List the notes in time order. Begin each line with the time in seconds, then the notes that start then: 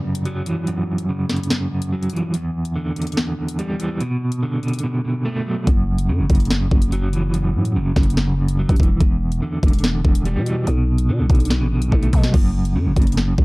Already playing: C#3
0.04 F#2
0.15 closed hi-hat
0.25 F#3, closed hi-hat
0.46 E3, closed hi-hat
0.67 F#2, closed hi-hat
0.98 closed hi-hat
1.09 C#3
1.29 F#2, snare, closed hi-hat
1.36 closed hi-hat
1.43 closed hi-hat
1.50 F#2, snare
1.71 F#2
1.82 closed hi-hat
1.92 F#3
2.03 closed hi-hat
2.10 E3, closed hi-hat
2.16 closed hi-hat
2.34 E2, closed hi-hat
2.65 closed hi-hat
2.76 D3
2.96 E2, closed hi-hat
3.02 closed hi-hat
3.07 closed hi-hat
3.12 closed hi-hat
3.17 E2, snare
3.38 E2
3.48 closed hi-hat
3.59 G3, closed hi-hat
3.80 E3, closed hi-hat
4.00 B2, closed hi-hat
4.32 closed hi-hat
4.43 D3
4.63 B2, closed hi-hat
4.68 closed hi-hat
4.73 closed hi-hat
4.79 closed hi-hat
4.83 B2
5.05 B2
5.25 A3
5.46 F#3
5.67 F#1 F#2, kick, closed hi-hat
5.98 closed hi-hat
6.09 F#2 C#3
6.19 F#1
6.30 F#1 F#2, kick, closed hi-hat
6.35 closed hi-hat
6.40 closed hi-hat
6.45 closed hi-hat
6.50 F#2, snare
6.71 F#1 F#2, kick
6.82 closed hi-hat
6.92 F#3, closed hi-hat
7.13 E3, closed hi-hat
7.34 F#2, closed hi-hat
7.55 A2
7.65 closed hi-hat
7.75 F#1 C#3
7.96 F#1 F#2, kick, snare, closed hi-hat
8.03 closed hi-hat
8.10 closed hi-hat
8.17 F#2, snare
8.38 F#2
8.48 closed hi-hat
8.59 F#3
8.69 A1, kick, closed hi-hat
8.76 E1 E3, kick, closed hi-hat
8.83 closed hi-hat
9.00 E1 E2, kick, closed hi-hat
9.32 closed hi-hat
9.42 D3
9.63 E1 E2, kick, closed hi-hat
9.68 closed hi-hat
9.73 closed hi-hat
9.79 closed hi-hat
9.83 E2, snare
10.04 E1 E2, kick
10.15 closed hi-hat
10.25 G3, closed hi-hat
10.36 B2
10.46 E3, closed hi-hat
10.67 B1 B2, closed hi-hat
10.98 closed hi-hat
11.09 B2 D3
11.19 B1
11.30 B1 B2, kick, closed hi-hat
11.35 closed hi-hat
11.40 closed hi-hat
11.45 closed hi-hat
11.50 B2, snare
11.61 A1
11.71 B2
11.77 B1
11.82 closed hi-hat
11.91 B1 A3, kick
12.03 closed hi-hat
12.13 B2 F#3, kick, closed hi-hat, open hi-hat
12.23 snare
12.33 F#1 F#2, kick, crash
12.65 closed hi-hat
12.75 F#2 C#3
12.86 F#1
12.96 F#1 F#2, kick, closed hi-hat
13.02 closed hi-hat
13.07 closed hi-hat
13.12 closed hi-hat
13.17 F#2, snare
13.38 F#1 F#2, kick